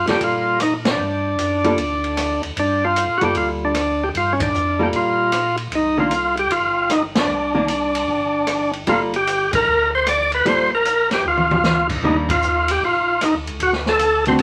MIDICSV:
0, 0, Header, 1, 5, 480
1, 0, Start_track
1, 0, Key_signature, -2, "minor"
1, 0, Tempo, 393959
1, 1216, Time_signature, 4, 2, 24, 8
1, 17571, End_track
2, 0, Start_track
2, 0, Title_t, "Tonewheel organ"
2, 0, Program_c, 0, 16
2, 127, Note_on_c, 0, 67, 71
2, 278, Note_off_c, 0, 67, 0
2, 290, Note_on_c, 0, 65, 70
2, 721, Note_off_c, 0, 65, 0
2, 762, Note_on_c, 0, 63, 69
2, 899, Note_off_c, 0, 63, 0
2, 1106, Note_on_c, 0, 62, 64
2, 2948, Note_off_c, 0, 62, 0
2, 3162, Note_on_c, 0, 62, 79
2, 3468, Note_on_c, 0, 65, 80
2, 3472, Note_off_c, 0, 62, 0
2, 3871, Note_off_c, 0, 65, 0
2, 3872, Note_on_c, 0, 66, 54
2, 3940, Note_off_c, 0, 66, 0
2, 3955, Note_on_c, 0, 67, 72
2, 4095, Note_off_c, 0, 67, 0
2, 4109, Note_on_c, 0, 65, 79
2, 4247, Note_off_c, 0, 65, 0
2, 4443, Note_on_c, 0, 62, 77
2, 4918, Note_on_c, 0, 67, 63
2, 4919, Note_off_c, 0, 62, 0
2, 4984, Note_off_c, 0, 67, 0
2, 5085, Note_on_c, 0, 65, 78
2, 5272, Note_on_c, 0, 61, 51
2, 5277, Note_off_c, 0, 65, 0
2, 5376, Note_off_c, 0, 61, 0
2, 5392, Note_on_c, 0, 62, 75
2, 5877, Note_off_c, 0, 62, 0
2, 5885, Note_on_c, 0, 67, 71
2, 5950, Note_off_c, 0, 67, 0
2, 6044, Note_on_c, 0, 65, 77
2, 6775, Note_off_c, 0, 65, 0
2, 7009, Note_on_c, 0, 63, 76
2, 7286, Note_off_c, 0, 63, 0
2, 7312, Note_on_c, 0, 65, 76
2, 7747, Note_off_c, 0, 65, 0
2, 7787, Note_on_c, 0, 67, 81
2, 7941, Note_on_c, 0, 65, 81
2, 7946, Note_off_c, 0, 67, 0
2, 8421, Note_on_c, 0, 63, 73
2, 8431, Note_off_c, 0, 65, 0
2, 8561, Note_off_c, 0, 63, 0
2, 8760, Note_on_c, 0, 62, 68
2, 10617, Note_off_c, 0, 62, 0
2, 10834, Note_on_c, 0, 65, 86
2, 10972, Note_off_c, 0, 65, 0
2, 11159, Note_on_c, 0, 67, 87
2, 11592, Note_off_c, 0, 67, 0
2, 11636, Note_on_c, 0, 70, 104
2, 12071, Note_off_c, 0, 70, 0
2, 12122, Note_on_c, 0, 72, 90
2, 12275, Note_off_c, 0, 72, 0
2, 12289, Note_on_c, 0, 74, 88
2, 12567, Note_off_c, 0, 74, 0
2, 12605, Note_on_c, 0, 71, 80
2, 12741, Note_off_c, 0, 71, 0
2, 12763, Note_on_c, 0, 72, 93
2, 13044, Note_off_c, 0, 72, 0
2, 13093, Note_on_c, 0, 70, 88
2, 13521, Note_off_c, 0, 70, 0
2, 13567, Note_on_c, 0, 67, 81
2, 13718, Note_off_c, 0, 67, 0
2, 13741, Note_on_c, 0, 65, 87
2, 14467, Note_off_c, 0, 65, 0
2, 14684, Note_on_c, 0, 63, 75
2, 14820, Note_off_c, 0, 63, 0
2, 14998, Note_on_c, 0, 65, 81
2, 15481, Note_off_c, 0, 65, 0
2, 15489, Note_on_c, 0, 67, 84
2, 15640, Note_off_c, 0, 67, 0
2, 15653, Note_on_c, 0, 65, 79
2, 16129, Note_on_c, 0, 63, 76
2, 16130, Note_off_c, 0, 65, 0
2, 16264, Note_off_c, 0, 63, 0
2, 16603, Note_on_c, 0, 66, 86
2, 16740, Note_off_c, 0, 66, 0
2, 16921, Note_on_c, 0, 69, 98
2, 17356, Note_off_c, 0, 69, 0
2, 17399, Note_on_c, 0, 72, 78
2, 17468, Note_off_c, 0, 72, 0
2, 17571, End_track
3, 0, Start_track
3, 0, Title_t, "Hollow-body jazz guitar"
3, 0, Program_c, 1, 26
3, 100, Note_on_c, 1, 55, 46
3, 101, Note_on_c, 1, 58, 49
3, 111, Note_on_c, 1, 65, 52
3, 112, Note_on_c, 1, 69, 50
3, 707, Note_off_c, 1, 55, 0
3, 708, Note_off_c, 1, 58, 0
3, 712, Note_off_c, 1, 65, 0
3, 713, Note_off_c, 1, 69, 0
3, 2002, Note_on_c, 1, 55, 55
3, 2013, Note_on_c, 1, 65, 61
3, 2014, Note_on_c, 1, 58, 64
3, 2017, Note_on_c, 1, 69, 67
3, 2154, Note_off_c, 1, 55, 0
3, 2159, Note_off_c, 1, 58, 0
3, 2159, Note_off_c, 1, 65, 0
3, 2161, Note_off_c, 1, 69, 0
3, 3914, Note_on_c, 1, 55, 50
3, 3925, Note_on_c, 1, 58, 53
3, 3928, Note_on_c, 1, 65, 52
3, 3929, Note_on_c, 1, 69, 56
3, 4532, Note_off_c, 1, 55, 0
3, 4537, Note_off_c, 1, 58, 0
3, 4539, Note_off_c, 1, 65, 0
3, 4539, Note_off_c, 1, 69, 0
3, 5842, Note_on_c, 1, 55, 47
3, 5853, Note_on_c, 1, 58, 49
3, 5857, Note_on_c, 1, 69, 48
3, 5860, Note_on_c, 1, 65, 52
3, 6456, Note_off_c, 1, 55, 0
3, 6461, Note_off_c, 1, 58, 0
3, 6463, Note_off_c, 1, 69, 0
3, 6465, Note_off_c, 1, 65, 0
3, 7281, Note_on_c, 1, 51, 47
3, 7287, Note_on_c, 1, 58, 54
3, 7293, Note_on_c, 1, 62, 51
3, 7432, Note_off_c, 1, 51, 0
3, 7435, Note_off_c, 1, 58, 0
3, 7437, Note_off_c, 1, 62, 0
3, 9194, Note_on_c, 1, 51, 52
3, 9197, Note_on_c, 1, 58, 58
3, 9204, Note_on_c, 1, 62, 66
3, 9348, Note_off_c, 1, 51, 0
3, 9350, Note_off_c, 1, 58, 0
3, 9354, Note_off_c, 1, 62, 0
3, 10809, Note_on_c, 1, 55, 60
3, 10819, Note_on_c, 1, 65, 63
3, 10822, Note_on_c, 1, 58, 63
3, 10832, Note_on_c, 1, 69, 63
3, 11096, Note_off_c, 1, 55, 0
3, 11101, Note_off_c, 1, 65, 0
3, 11103, Note_off_c, 1, 58, 0
3, 11108, Note_off_c, 1, 69, 0
3, 12736, Note_on_c, 1, 55, 57
3, 12736, Note_on_c, 1, 58, 54
3, 12744, Note_on_c, 1, 65, 52
3, 12755, Note_on_c, 1, 69, 61
3, 13021, Note_off_c, 1, 55, 0
3, 13021, Note_off_c, 1, 58, 0
3, 13025, Note_off_c, 1, 65, 0
3, 13030, Note_off_c, 1, 69, 0
3, 14665, Note_on_c, 1, 51, 48
3, 14673, Note_on_c, 1, 58, 57
3, 14676, Note_on_c, 1, 55, 51
3, 14678, Note_on_c, 1, 62, 51
3, 14946, Note_off_c, 1, 51, 0
3, 14950, Note_off_c, 1, 58, 0
3, 14951, Note_off_c, 1, 55, 0
3, 14953, Note_off_c, 1, 62, 0
3, 17384, Note_on_c, 1, 50, 56
3, 17385, Note_on_c, 1, 57, 52
3, 17394, Note_on_c, 1, 60, 59
3, 17398, Note_on_c, 1, 66, 58
3, 17528, Note_off_c, 1, 50, 0
3, 17528, Note_off_c, 1, 57, 0
3, 17533, Note_off_c, 1, 60, 0
3, 17535, Note_off_c, 1, 66, 0
3, 17571, End_track
4, 0, Start_track
4, 0, Title_t, "Tonewheel organ"
4, 0, Program_c, 2, 16
4, 87, Note_on_c, 2, 43, 33
4, 171, Note_off_c, 2, 43, 0
4, 250, Note_on_c, 2, 46, 75
4, 1164, Note_off_c, 2, 46, 0
4, 1203, Note_on_c, 2, 43, 76
4, 1655, Note_off_c, 2, 43, 0
4, 1694, Note_on_c, 2, 42, 62
4, 2140, Note_off_c, 2, 42, 0
4, 2165, Note_on_c, 2, 38, 70
4, 2916, Note_off_c, 2, 38, 0
4, 2965, Note_on_c, 2, 38, 35
4, 3048, Note_off_c, 2, 38, 0
4, 3123, Note_on_c, 2, 43, 78
4, 3722, Note_off_c, 2, 43, 0
4, 3757, Note_on_c, 2, 45, 53
4, 3913, Note_off_c, 2, 45, 0
4, 3914, Note_on_c, 2, 42, 59
4, 4071, Note_off_c, 2, 42, 0
4, 4083, Note_on_c, 2, 38, 72
4, 4998, Note_off_c, 2, 38, 0
4, 5045, Note_on_c, 2, 43, 79
4, 5494, Note_off_c, 2, 43, 0
4, 5519, Note_on_c, 2, 41, 57
4, 5971, Note_off_c, 2, 41, 0
4, 6001, Note_on_c, 2, 46, 68
4, 6918, Note_off_c, 2, 46, 0
4, 6963, Note_on_c, 2, 36, 73
4, 7879, Note_off_c, 2, 36, 0
4, 7917, Note_on_c, 2, 31, 68
4, 8836, Note_off_c, 2, 31, 0
4, 8876, Note_on_c, 2, 36, 69
4, 9796, Note_off_c, 2, 36, 0
4, 9842, Note_on_c, 2, 31, 72
4, 10760, Note_off_c, 2, 31, 0
4, 10804, Note_on_c, 2, 31, 76
4, 11557, Note_off_c, 2, 31, 0
4, 11603, Note_on_c, 2, 32, 67
4, 11759, Note_off_c, 2, 32, 0
4, 11764, Note_on_c, 2, 38, 75
4, 12681, Note_off_c, 2, 38, 0
4, 12735, Note_on_c, 2, 34, 74
4, 13648, Note_off_c, 2, 34, 0
4, 13696, Note_on_c, 2, 38, 72
4, 14609, Note_off_c, 2, 38, 0
4, 14653, Note_on_c, 2, 39, 71
4, 15568, Note_off_c, 2, 39, 0
4, 15609, Note_on_c, 2, 34, 72
4, 16209, Note_off_c, 2, 34, 0
4, 16256, Note_on_c, 2, 38, 62
4, 16406, Note_off_c, 2, 38, 0
4, 16410, Note_on_c, 2, 37, 63
4, 16563, Note_off_c, 2, 37, 0
4, 16568, Note_on_c, 2, 38, 74
4, 17486, Note_off_c, 2, 38, 0
4, 17527, Note_on_c, 2, 33, 75
4, 17571, Note_off_c, 2, 33, 0
4, 17571, End_track
5, 0, Start_track
5, 0, Title_t, "Drums"
5, 88, Note_on_c, 9, 38, 33
5, 88, Note_on_c, 9, 51, 41
5, 210, Note_off_c, 9, 38, 0
5, 210, Note_off_c, 9, 51, 0
5, 251, Note_on_c, 9, 51, 49
5, 253, Note_on_c, 9, 36, 28
5, 373, Note_off_c, 9, 51, 0
5, 375, Note_off_c, 9, 36, 0
5, 728, Note_on_c, 9, 37, 52
5, 728, Note_on_c, 9, 44, 48
5, 728, Note_on_c, 9, 51, 56
5, 850, Note_off_c, 9, 37, 0
5, 850, Note_off_c, 9, 44, 0
5, 850, Note_off_c, 9, 51, 0
5, 1038, Note_on_c, 9, 38, 61
5, 1038, Note_on_c, 9, 51, 55
5, 1160, Note_off_c, 9, 38, 0
5, 1160, Note_off_c, 9, 51, 0
5, 1687, Note_on_c, 9, 44, 49
5, 1687, Note_on_c, 9, 51, 52
5, 1809, Note_off_c, 9, 44, 0
5, 1809, Note_off_c, 9, 51, 0
5, 2001, Note_on_c, 9, 51, 41
5, 2122, Note_off_c, 9, 51, 0
5, 2164, Note_on_c, 9, 51, 57
5, 2167, Note_on_c, 9, 36, 30
5, 2286, Note_off_c, 9, 51, 0
5, 2289, Note_off_c, 9, 36, 0
5, 2483, Note_on_c, 9, 51, 36
5, 2605, Note_off_c, 9, 51, 0
5, 2644, Note_on_c, 9, 37, 51
5, 2644, Note_on_c, 9, 44, 51
5, 2644, Note_on_c, 9, 51, 60
5, 2766, Note_off_c, 9, 37, 0
5, 2766, Note_off_c, 9, 44, 0
5, 2766, Note_off_c, 9, 51, 0
5, 2959, Note_on_c, 9, 51, 37
5, 3080, Note_off_c, 9, 51, 0
5, 3127, Note_on_c, 9, 36, 29
5, 3128, Note_on_c, 9, 51, 52
5, 3249, Note_off_c, 9, 36, 0
5, 3250, Note_off_c, 9, 51, 0
5, 3608, Note_on_c, 9, 44, 47
5, 3608, Note_on_c, 9, 51, 57
5, 3730, Note_off_c, 9, 44, 0
5, 3730, Note_off_c, 9, 51, 0
5, 3912, Note_on_c, 9, 51, 43
5, 4034, Note_off_c, 9, 51, 0
5, 4077, Note_on_c, 9, 51, 48
5, 4083, Note_on_c, 9, 36, 30
5, 4199, Note_off_c, 9, 51, 0
5, 4204, Note_off_c, 9, 36, 0
5, 4563, Note_on_c, 9, 37, 52
5, 4563, Note_on_c, 9, 44, 44
5, 4563, Note_on_c, 9, 51, 58
5, 4685, Note_off_c, 9, 37, 0
5, 4685, Note_off_c, 9, 44, 0
5, 4685, Note_off_c, 9, 51, 0
5, 5045, Note_on_c, 9, 36, 30
5, 5053, Note_on_c, 9, 51, 50
5, 5167, Note_off_c, 9, 36, 0
5, 5175, Note_off_c, 9, 51, 0
5, 5362, Note_on_c, 9, 36, 73
5, 5363, Note_on_c, 9, 51, 64
5, 5484, Note_off_c, 9, 36, 0
5, 5485, Note_off_c, 9, 51, 0
5, 5534, Note_on_c, 9, 44, 46
5, 5656, Note_off_c, 9, 44, 0
5, 6005, Note_on_c, 9, 36, 29
5, 6005, Note_on_c, 9, 51, 44
5, 6126, Note_off_c, 9, 36, 0
5, 6127, Note_off_c, 9, 51, 0
5, 6482, Note_on_c, 9, 37, 53
5, 6482, Note_on_c, 9, 44, 46
5, 6482, Note_on_c, 9, 51, 58
5, 6604, Note_off_c, 9, 37, 0
5, 6604, Note_off_c, 9, 44, 0
5, 6604, Note_off_c, 9, 51, 0
5, 6791, Note_on_c, 9, 51, 37
5, 6912, Note_off_c, 9, 51, 0
5, 6965, Note_on_c, 9, 36, 30
5, 6966, Note_on_c, 9, 51, 50
5, 7086, Note_off_c, 9, 36, 0
5, 7087, Note_off_c, 9, 51, 0
5, 7442, Note_on_c, 9, 44, 42
5, 7442, Note_on_c, 9, 51, 52
5, 7564, Note_off_c, 9, 44, 0
5, 7564, Note_off_c, 9, 51, 0
5, 7765, Note_on_c, 9, 51, 41
5, 7886, Note_off_c, 9, 51, 0
5, 7923, Note_on_c, 9, 36, 29
5, 7926, Note_on_c, 9, 51, 52
5, 8045, Note_off_c, 9, 36, 0
5, 8048, Note_off_c, 9, 51, 0
5, 8402, Note_on_c, 9, 37, 56
5, 8402, Note_on_c, 9, 44, 51
5, 8402, Note_on_c, 9, 51, 51
5, 8524, Note_off_c, 9, 37, 0
5, 8524, Note_off_c, 9, 44, 0
5, 8524, Note_off_c, 9, 51, 0
5, 8716, Note_on_c, 9, 38, 69
5, 8716, Note_on_c, 9, 51, 57
5, 8838, Note_off_c, 9, 38, 0
5, 8838, Note_off_c, 9, 51, 0
5, 9359, Note_on_c, 9, 44, 51
5, 9359, Note_on_c, 9, 51, 58
5, 9481, Note_off_c, 9, 44, 0
5, 9481, Note_off_c, 9, 51, 0
5, 9684, Note_on_c, 9, 51, 61
5, 9806, Note_off_c, 9, 51, 0
5, 9845, Note_on_c, 9, 36, 30
5, 9967, Note_off_c, 9, 36, 0
5, 10318, Note_on_c, 9, 37, 51
5, 10318, Note_on_c, 9, 44, 45
5, 10318, Note_on_c, 9, 51, 55
5, 10440, Note_off_c, 9, 37, 0
5, 10440, Note_off_c, 9, 44, 0
5, 10440, Note_off_c, 9, 51, 0
5, 10640, Note_on_c, 9, 51, 38
5, 10762, Note_off_c, 9, 51, 0
5, 10804, Note_on_c, 9, 51, 51
5, 10808, Note_on_c, 9, 36, 29
5, 10926, Note_off_c, 9, 51, 0
5, 10930, Note_off_c, 9, 36, 0
5, 11129, Note_on_c, 9, 51, 44
5, 11251, Note_off_c, 9, 51, 0
5, 11296, Note_on_c, 9, 44, 49
5, 11296, Note_on_c, 9, 51, 56
5, 11418, Note_off_c, 9, 44, 0
5, 11418, Note_off_c, 9, 51, 0
5, 11608, Note_on_c, 9, 51, 65
5, 11611, Note_on_c, 9, 36, 72
5, 11730, Note_off_c, 9, 51, 0
5, 11732, Note_off_c, 9, 36, 0
5, 12263, Note_on_c, 9, 37, 53
5, 12263, Note_on_c, 9, 44, 46
5, 12263, Note_on_c, 9, 51, 61
5, 12384, Note_off_c, 9, 37, 0
5, 12384, Note_off_c, 9, 44, 0
5, 12384, Note_off_c, 9, 51, 0
5, 12571, Note_on_c, 9, 51, 40
5, 12693, Note_off_c, 9, 51, 0
5, 12738, Note_on_c, 9, 36, 31
5, 12740, Note_on_c, 9, 51, 53
5, 12860, Note_off_c, 9, 36, 0
5, 12862, Note_off_c, 9, 51, 0
5, 13222, Note_on_c, 9, 44, 52
5, 13222, Note_on_c, 9, 51, 53
5, 13344, Note_off_c, 9, 44, 0
5, 13344, Note_off_c, 9, 51, 0
5, 13534, Note_on_c, 9, 38, 36
5, 13534, Note_on_c, 9, 51, 43
5, 13655, Note_off_c, 9, 38, 0
5, 13655, Note_off_c, 9, 51, 0
5, 13857, Note_on_c, 9, 48, 48
5, 13979, Note_off_c, 9, 48, 0
5, 14025, Note_on_c, 9, 48, 70
5, 14147, Note_off_c, 9, 48, 0
5, 14180, Note_on_c, 9, 38, 47
5, 14180, Note_on_c, 9, 44, 44
5, 14302, Note_off_c, 9, 38, 0
5, 14302, Note_off_c, 9, 44, 0
5, 14493, Note_on_c, 9, 36, 67
5, 14494, Note_on_c, 9, 49, 60
5, 14615, Note_off_c, 9, 36, 0
5, 14616, Note_off_c, 9, 49, 0
5, 14657, Note_on_c, 9, 36, 31
5, 14779, Note_off_c, 9, 36, 0
5, 14974, Note_on_c, 9, 36, 71
5, 14982, Note_on_c, 9, 51, 66
5, 15095, Note_off_c, 9, 36, 0
5, 15104, Note_off_c, 9, 51, 0
5, 15133, Note_on_c, 9, 44, 50
5, 15255, Note_off_c, 9, 44, 0
5, 15450, Note_on_c, 9, 51, 64
5, 15572, Note_off_c, 9, 51, 0
5, 15613, Note_on_c, 9, 36, 28
5, 15735, Note_off_c, 9, 36, 0
5, 16097, Note_on_c, 9, 37, 55
5, 16097, Note_on_c, 9, 44, 48
5, 16097, Note_on_c, 9, 51, 56
5, 16218, Note_off_c, 9, 37, 0
5, 16218, Note_off_c, 9, 44, 0
5, 16218, Note_off_c, 9, 51, 0
5, 16415, Note_on_c, 9, 51, 39
5, 16537, Note_off_c, 9, 51, 0
5, 16570, Note_on_c, 9, 51, 53
5, 16572, Note_on_c, 9, 36, 31
5, 16692, Note_off_c, 9, 51, 0
5, 16694, Note_off_c, 9, 36, 0
5, 16727, Note_on_c, 9, 38, 28
5, 16849, Note_off_c, 9, 38, 0
5, 16890, Note_on_c, 9, 38, 39
5, 17012, Note_off_c, 9, 38, 0
5, 17048, Note_on_c, 9, 44, 46
5, 17048, Note_on_c, 9, 51, 58
5, 17169, Note_off_c, 9, 44, 0
5, 17169, Note_off_c, 9, 51, 0
5, 17366, Note_on_c, 9, 51, 42
5, 17488, Note_off_c, 9, 51, 0
5, 17527, Note_on_c, 9, 51, 55
5, 17532, Note_on_c, 9, 36, 28
5, 17571, Note_off_c, 9, 36, 0
5, 17571, Note_off_c, 9, 51, 0
5, 17571, End_track
0, 0, End_of_file